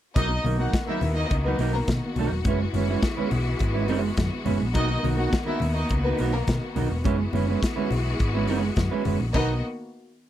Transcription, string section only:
0.15 2.43 D#3 medium
0.15 2.43 A#3 medium
0.15 2.43 B3 medium
0.15 7.01 F#4 medium
2.45 4.73 E3 medium
2.45 4.73 G#3 medium
2.45 9.31 B3 medium
4.76 7.03 D#3 medium
4.76 7.03 A#3 medium
7.06 9.33 E3 medium
7.06 9.33 G#3 medium
7.06 9.33 F#4 medium
9.33 9.61 D#3 medium
9.33 9.60 A#3 medium
9.33 9.60 B3 medium
9.33 9.61 F#4 medium

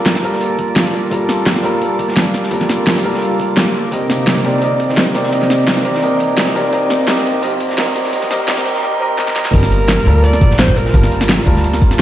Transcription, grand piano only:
0.00 0.23 G3 medium
0.00 0.23 F4 medium
0.00 0.24 A4 medium
0.00 0.25 A#4 medium
0.23 1.09 G3 medium
0.23 1.09 F4 medium
0.23 1.10 A4 medium
0.23 1.10 A#4 medium
1.10 1.61 G3 medium
1.10 1.62 F4 medium
1.10 1.62 A4 medium
1.10 1.63 A#4 medium
1.63 2.49 G3 medium
1.63 2.50 F4 medium
1.63 2.50 A4 medium
1.63 2.50 A#4 loud
2.51 3.02 G3 medium
2.51 3.02 F4 medium
2.51 3.03 A4 medium
2.51 3.03 A#4 medium
3.03 3.90 G3 medium
3.03 3.90 F4 medium
3.03 3.90 A4 medium
3.03 3.91 A#4 loud
3.91 4.42 C4 medium
3.91 4.43 G4 medium
3.91 4.43 A#4 medium
3.91 4.43 D#5 medium
4.44 4.60 C4 medium
4.44 4.61 G4 medium
4.44 4.61 A#4 medium
4.44 4.62 D5 medium
4.61 5.12 C4 medium
4.61 5.13 G4 medium
4.61 5.13 A#4 medium
4.61 5.14 D#5 medium
5.14 5.30 C4 medium
5.14 5.31 G4 medium
5.14 5.31 A#4 medium
5.14 5.32 D5 medium
5.31 5.83 C4 medium
5.31 5.83 G4 medium
5.31 5.83 A#4 medium
5.31 5.84 D#5 medium
5.84 6.00 C4 medium
5.84 6.01 G4 medium
5.84 6.02 A#4 medium
5.84 6.02 D5 loud
6.02 6.53 C4 medium
6.02 6.53 G4 medium
6.02 6.54 A#4 medium
6.02 6.54 D#5 medium
6.54 6.70 C4 medium
6.54 6.71 G4 medium
6.54 6.72 A#4 medium
6.54 6.72 D5 loud
6.72 7.05 C4 medium
6.72 7.06 G4 medium
6.72 7.07 A#4 medium
6.72 7.07 D#5 medium
7.07 7.40 C4 medium
7.07 7.41 G4 medium
7.07 7.42 A#4 medium
7.07 7.42 D#5 medium
7.42 7.75 C4 medium
7.42 7.76 G4 medium
7.42 7.77 A#4 medium
7.42 7.77 D#5 medium
7.77 8.10 C4 medium
7.77 8.11 G4 medium
7.77 8.12 A#4 medium
7.77 8.12 D#5 medium
8.12 8.28 C4 medium
8.12 8.29 G4 medium
8.12 8.30 A#4 medium
8.12 8.30 D#5 medium
8.30 8.45 C4 medium
8.30 8.46 G4 medium
8.30 8.47 A#4 medium
8.30 8.48 D#5 medium
8.47 8.63 C4 medium
8.47 8.64 G4 medium
8.47 8.65 A#4 medium
8.47 8.65 D#5 medium
8.64 8.80 C4 medium
8.64 8.81 G4 medium
8.64 8.82 A#4 medium
8.64 8.83 D#5 medium
8.82 8.98 C4 medium
8.82 8.99 G4 medium
8.82 9.00 A#4 medium
8.82 9.00 D#5 medium
9.00 9.16 C4 medium
9.00 9.17 G4 medium
9.00 9.17 A#4 medium
9.00 9.18 D#5 medium
9.17 9.33 C4 medium
9.17 9.34 G4 medium
9.17 9.35 A#4 medium
9.17 9.35 D#5 medium
9.35 9.52 C4 medium
9.35 9.52 G4 medium
9.35 9.52 A#4 medium
9.35 9.53 D#5 medium
9.52 10.04 G3 medium
9.52 10.04 F4 medium
9.52 10.05 A#4 medium
10.05 10.91 G3 medium
10.05 10.92 F4 medium
10.05 10.92 A4 medium
10.05 10.93 A#4 loud
10.93 11.44 G3 medium
10.93 11.44 F4 medium
10.93 11.45 A#4 medium
10.93 11.45 A5 medium
11.45 12.02 G3 medium
11.45 12.02 F4 medium
11.45 12.02 A#4 loud
11.45 12.02 A5 medium

